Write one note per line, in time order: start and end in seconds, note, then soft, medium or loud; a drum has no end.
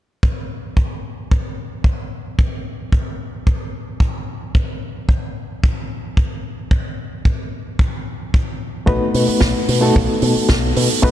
0.23 kick loud
0.77 kick medium
1.31 kick loud
1.84 kick loud
2.39 kick loud
2.92 kick loud
3.47 kick loud
4.00 kick loud
4.55 kick loud
5.09 kick medium
5.64 kick loud
6.17 kick loud
6.71 kick loud
7.25 kick loud
7.79 kick loud
8.34 kick loud
8.86 8.98 B1 medium
8.86 9.78 A3 medium
8.86 9.78 B3 medium
8.86 9.79 D#4 medium
8.86 9.79 F#4 medium
8.86 9.79 B4 medium
8.86 kick loud
9.14 9.25 B2 medium
9.14 open hi-hat loud
9.28 muted fingered electric bass stroke soft
9.41 9.52 B1 medium
9.41 kick loud
9.41 snare loud
9.69 9.90 B2 medium
9.69 open hi-hat loud
9.81 11.00 A3 medium
9.81 11.00 B3 medium
9.81 11.00 D#4 medium
9.81 11.00 F#4 medium
9.81 11.01 A4 medium
9.96 10.07 B1 medium
9.96 kick loud
10.22 10.33 B2 medium
10.22 open hi-hat medium
10.36 muted fingered electric bass stroke soft
10.49 10.71 B1 medium
10.49 kick loud
10.49 snare loud
10.76 10.88 B2 medium
10.76 open hi-hat loud
11.02 11.11 B1 medium
11.02 11.11 A3 medium
11.02 11.11 B3 medium
11.02 11.11 D#4 medium
11.02 11.11 F#4 medium
11.02 11.11 B4 loud
11.02 kick loud